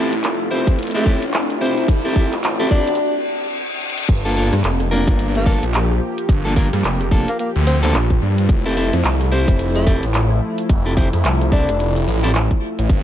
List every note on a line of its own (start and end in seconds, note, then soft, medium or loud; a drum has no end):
0.00 0.22 A1 medium
0.00 2.96 A3 medium
0.00 0.13 C4 medium
0.00 0.13 E4 medium
0.00 2.96 E4 medium
0.00 2.96 F4 medium
0.00 0.13 G4 medium
0.00 0.13 A4 medium
0.00 riser medium
0.13 closed hi-hat medium
0.23 0.49 F1 loud
0.23 clap loud
0.23 closed hi-hat medium
0.51 1.04 F1 loud
0.51 0.77 C4 medium
0.51 0.77 E4 medium
0.51 0.77 G4 medium
0.51 0.77 C5 medium
0.67 kick loud
0.67 closed hi-hat medium
0.79 closed hi-hat medium
0.83 closed hi-hat medium
0.87 closed hi-hat soft
0.91 1.05 E4 medium
0.91 closed hi-hat soft
0.95 1.13 A3 medium
0.95 1.05 C4 medium
0.95 1.05 G4 medium
0.95 1.05 A4 loud
0.95 closed hi-hat soft
0.98 closed hi-hat soft
1.01 closed hi-hat soft
1.03 1.32 A1 loud
1.03 1.23 C4 medium
1.03 1.23 E4 medium
1.03 kick loud
1.03 closed hi-hat soft
1.22 closed hi-hat medium
1.33 1.75 F1 loud
1.33 clap loud
1.33 closed hi-hat medium
1.50 closed hi-hat soft
1.61 1.87 C4 medium
1.61 1.87 E4 medium
1.61 1.87 G4 medium
1.61 1.87 C5 medium
1.77 1.87 C2 loud
1.77 closed hi-hat medium
1.88 2.30 C2 loud
1.88 kick loud
1.88 closed hi-hat medium
2.05 2.15 C4 medium
2.05 2.15 E4 medium
2.05 2.15 G4 medium
2.05 2.15 A4 loud
2.16 2.33 C4 medium
2.16 2.33 E4 medium
2.16 2.33 G4 medium
2.16 2.33 A4 medium
2.16 kick loud
2.32 2.42 F1 loud
2.32 clap soft
2.32 closed hi-hat medium
2.44 2.97 A1 loud
2.44 clap loud
2.44 closed hi-hat medium
2.60 2.70 C4 medium
2.60 2.70 E4 medium
2.60 2.70 G4 medium
2.60 2.70 A4 loud
2.60 closed hi-hat soft
2.71 2.88 C4 medium
2.71 3.15 D4 medium
2.71 2.88 G4 medium
2.71 2.88 A4 medium
2.71 kick loud
2.88 closed hi-hat soft
2.95 closed hi-hat soft
2.95 reverse cymbal medium
3.81 closed hi-hat medium
3.90 closed hi-hat medium
3.98 closed hi-hat medium
4.03 closed hi-hat medium
4.09 4.50 G1 loud
4.09 8.45 F3 medium
4.09 8.45 A#3 medium
4.09 8.45 G4 medium
4.09 kick loud
4.09 closed hi-hat medium
4.09 crash loud
4.25 4.35 A#3 medium
4.25 4.35 D4 medium
4.25 4.35 F4 medium
4.25 4.35 A4 loud
4.36 4.53 A#3 medium
4.36 4.53 D4 medium
4.36 4.53 F4 medium
4.36 4.53 A4 medium
4.36 open hi-hat medium
4.53 4.62 G2 loud
4.53 cross-stick medium
4.53 closed hi-hat medium
4.64 5.05 F1 loud
4.64 clap loud
4.64 closed hi-hat medium
4.80 cross-stick soft
4.80 closed hi-hat soft
4.91 5.44 A#3 medium
4.91 5.44 D4 medium
4.91 5.44 F4 medium
4.91 5.44 A#4 loud
5.07 5.60 G1 loud
5.07 kick loud
5.07 closed hi-hat medium
5.19 closed hi-hat medium
5.35 5.54 A#3 medium
5.35 closed hi-hat soft
5.46 5.63 A#3 medium
5.46 5.63 D4 medium
5.46 5.63 F4 medium
5.46 5.63 A4 loud
5.46 kick loud
5.46 open hi-hat medium
5.63 6.00 A#1 loud
5.63 closed hi-hat medium
5.74 clap loud
5.74 closed hi-hat medium
5.90 cross-stick soft
6.18 closed hi-hat medium
6.29 6.70 G1 loud
6.29 kick loud
6.29 closed hi-hat medium
6.45 6.53 A#3 medium
6.45 6.53 D4 medium
6.45 6.53 F4 medium
6.45 6.53 A4 loud
6.56 6.67 A#3 medium
6.56 6.67 D4 medium
6.56 6.67 F4 medium
6.56 6.67 A#4 medium
6.56 kick loud
6.56 open hi-hat medium
6.73 6.83 G2 loud
6.73 cross-stick medium
6.73 closed hi-hat medium
6.84 7.25 F1 loud
6.84 clap loud
6.84 closed hi-hat medium
7.01 cross-stick soft
7.01 closed hi-hat soft
7.11 7.29 A#3 medium
7.11 7.29 D4 medium
7.11 7.29 F4 medium
7.11 7.29 A4 loud
7.11 kick loud
7.28 7.36 A#3 medium
7.28 closed hi-hat medium
7.39 7.50 A#3 medium
7.39 closed hi-hat medium
7.56 7.93 D2 loud
7.56 closed hi-hat soft
7.67 7.77 C4 medium
7.67 open hi-hat medium
7.83 7.95 A#3 medium
7.83 7.90 C4 medium
7.83 7.95 D4 medium
7.83 7.95 F4 medium
7.83 7.95 A4 loud
7.83 clap soft
7.83 closed hi-hat medium
7.94 8.20 A#1 loud
7.94 clap loud
7.94 closed hi-hat medium
8.10 kick medium
8.22 8.48 G2 loud
8.38 closed hi-hat medium
8.49 8.90 F1 loud
8.49 12.86 F3 medium
8.49 12.86 A3 medium
8.49 12.86 E4 medium
8.49 kick loud
8.49 closed hi-hat medium
8.66 8.75 C4 medium
8.66 8.75 E4 loud
8.66 8.75 G4 medium
8.66 8.75 A4 loud
8.76 8.94 C4 medium
8.76 8.94 E4 medium
8.76 8.94 G4 medium
8.76 8.94 A4 loud
8.76 open hi-hat medium
8.93 9.03 F2 loud
8.93 cross-stick medium
8.93 closed hi-hat medium
9.04 9.46 C2 loud
9.04 clap loud
9.04 closed hi-hat medium
9.21 cross-stick soft
9.21 closed hi-hat soft
9.32 9.84 C4 medium
9.32 9.84 E4 medium
9.32 9.84 G4 medium
9.32 9.84 C5 loud
9.48 10.01 F1 loud
9.48 kick loud
9.48 closed hi-hat medium
9.59 closed hi-hat medium
9.75 9.94 A3 medium
9.75 closed hi-hat soft
9.87 10.04 C4 medium
9.87 10.04 E4 medium
9.87 10.04 G4 medium
9.87 10.04 A4 loud
9.87 kick loud
9.87 open hi-hat medium
10.03 10.40 A1 loud
10.03 closed hi-hat medium
10.14 clap loud
10.14 closed hi-hat medium
10.30 cross-stick soft
10.58 closed hi-hat medium
10.69 11.11 F1 loud
10.69 kick loud
10.69 closed hi-hat medium
10.86 10.93 C4 medium
10.86 10.93 E4 medium
10.86 10.93 G4 medium
10.86 10.93 A4 medium
10.97 11.08 C4 medium
10.97 11.08 E4 medium
10.97 11.08 G4 medium
10.97 11.08 C5 medium
10.97 kick loud
10.97 open hi-hat medium
11.13 11.23 F2 loud
11.13 cross-stick soft
11.13 closed hi-hat medium
11.25 11.66 C2 loud
11.25 clap loud
11.25 closed hi-hat medium
11.41 cross-stick soft
11.41 closed hi-hat soft
11.52 11.69 C4 medium
11.52 11.96 D4 loud
11.52 11.69 E4 medium
11.52 11.69 G4 medium
11.52 11.69 A4 medium
11.52 kick loud
11.69 12.06 F1 loud
11.69 closed hi-hat medium
11.80 closed hi-hat medium
11.96 closed hi-hat soft
12.07 12.49 A1 loud
12.07 open hi-hat medium
12.23 12.31 C4 medium
12.23 12.31 E4 medium
12.23 12.31 G4 medium
12.23 12.31 A4 loud
12.23 clap soft
12.23 closed hi-hat medium
12.35 clap loud
12.35 closed hi-hat medium
12.51 kick medium
12.79 12.88 A1 loud
12.79 closed hi-hat medium
12.89 13.03 G1 loud
12.89 13.03 F3 medium
12.89 13.03 A#3 medium
12.89 13.03 G4 medium
12.89 kick loud
12.89 closed hi-hat medium